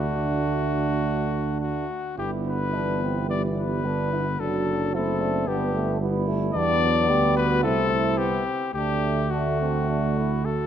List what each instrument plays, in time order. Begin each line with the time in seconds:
Already playing: tuba D2, trombone A3, french horn D4, flugelhorn D4, trumpet F#4
1.61 trumpet F#4
2.17 tuba G1, trombone D3, french horn B3, flugelhorn E4, trumpet G4
2.47 trumpet B4
2.74 trombone E3, flugelhorn D4
3.02 flugelhorn C4
3.29 french horn G3, flugelhorn B3, trumpet D5
3.58 trumpet B4
3.85 trombone D3, french horn B3, flugelhorn D4
4.12 flugelhorn E4
4.39 tuba F#1, trombone F#3, french horn D4, flugelhorn F#4, trumpet A4
4.94 trombone A3, french horn C4, flugelhorn E4, trumpet A4
5.20 flugelhorn D4
5.47 tuba G1, french horn B3, trombone B3, flugelhorn D4, trumpet G4
5.73 french horn A3
6.00 french horn G3, trombone B3, flugelhorn E4
6.28 trombone A3
6.54 tuba E2, trombone G3, french horn B3, flugelhorn D4, trumpet D5
6.82 trombone F#3
7.09 tuba D2, trombone G3, flugelhorn G4
7.37 flugelhorn F#4, trumpet B4
7.63 tuba C2, trombone A3, french horn C4, flugelhorn E4, trumpet A4
7.90 flugelhorn E4
8.18 trombone B3, trumpet G4
8.46 trombone C4
8.74 tuba D2, french horn A3, trombone A3, flugelhorn D4, trumpet G4
9.31 flugelhorn D4, trumpet F#4
9.60 flugelhorn C4
9.89 flugelhorn D4
10.18 flugelhorn E4
10.45 flugelhorn F#4, trumpet A4